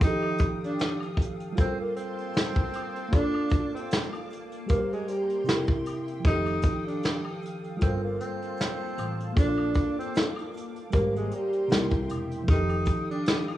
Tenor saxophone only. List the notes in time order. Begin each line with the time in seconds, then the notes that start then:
0.04 D#4
0.66 D4
1.60 C4
1.80 A#3
1.96 C4
3.14 D4
3.75 C4
4.70 A#3
4.93 G#3
5.09 G3
6.27 D#4
6.87 D4
7.82 C4
8.04 A#3
8.20 C4
9.39 D4
9.99 C4
10.94 A#3
11.17 G#3
11.34 G3
12.50 D#4
13.11 D4